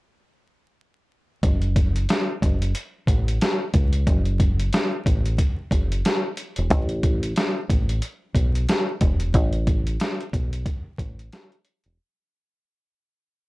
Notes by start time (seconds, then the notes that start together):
1.43 F#1, kick, closed hi-hat
1.62 closed hi-hat
1.76 kick, closed hi-hat
1.96 closed hi-hat
2.09 snare, closed hi-hat
2.42 F#1, kick, closed hi-hat
2.62 closed hi-hat
2.75 closed hi-hat
3.07 A1, kick, closed hi-hat
3.28 closed hi-hat
3.41 snare, closed hi-hat
3.74 C#2, kick, closed hi-hat
3.93 closed hi-hat
4.07 F#1, kick, closed hi-hat
4.25 closed hi-hat
4.40 kick, closed hi-hat
4.60 closed hi-hat
4.73 snare, closed hi-hat
5.06 A1, kick, closed hi-hat
5.26 closed hi-hat
5.38 kick, closed hi-hat
5.71 F#1, kick, closed hi-hat
5.92 closed hi-hat
6.05 snare, closed hi-hat
6.37 closed hi-hat
6.56 E1, closed hi-hat
6.70 A1, kick, closed hi-hat
6.89 closed hi-hat
7.03 kick, closed hi-hat
7.23 closed hi-hat
7.36 snare, closed hi-hat
7.70 A1, kick, closed hi-hat
7.89 closed hi-hat
8.02 closed hi-hat
8.35 B1, kick, closed hi-hat
8.55 closed hi-hat
8.69 snare, closed hi-hat
9.01 E1, kick, closed hi-hat
9.20 closed hi-hat
9.34 A1, kick, closed hi-hat
9.53 closed hi-hat
9.67 kick, closed hi-hat
9.87 closed hi-hat
10.00 snare, closed hi-hat
10.21 closed hi-hat
10.33 B1, kick, closed hi-hat
10.53 closed hi-hat
10.66 kick, closed hi-hat
10.98 A1, kick, closed hi-hat
11.19 closed hi-hat
11.32 snare, closed hi-hat
11.52 closed hi-hat
11.65 closed hi-hat
11.84 E1, closed hi-hat